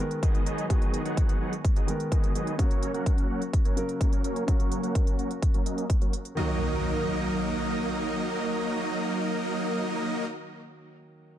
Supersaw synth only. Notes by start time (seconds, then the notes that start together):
0.23 F#3 B3 D#4 G#4 D#5
0.46 F#3 B3 D#4 G#4 D#5
0.70 F#3 B3 D#4 G#4 D#5
1.05 F#3 B3 D#4 G#4 F#5
1.41 F#3 B3 D#4 G#4 F#5
1.76 F#3 B3 D#4 G#4 D#5
2.12 F#3 B3 D#4 G#4 D#5
2.35 F#3 B3 D#4 G#4 D#5
2.59 F#3 A#3 C#4 A#4 C#5
2.94 F#3 A#3 C#4 A#4 F#5
3.30 F#3 A#3 C#4 A#4 F#5
3.65 F#3 A#3 C#4 A#4 C#5
4.01 F#3 A#3 C#4 A#4 C#5
4.24 F#3 A#3 C#4 A#4 C#5
4.48 F#3 A#3 C#4 A#4 C#5
4.83 F#3 A#3 C#4 A#4 F#5
5.19 F#3 A#3 C#4 A#4 F#5
5.54 F#3 A#3 C#4 A#4 C#5
5.66 F#3 A#3 C#4 A#4 D#5
6.02 F#3 A#3 C#4 A#4 C#5
6.37 F#3 A#3 D#4 A#4 D#5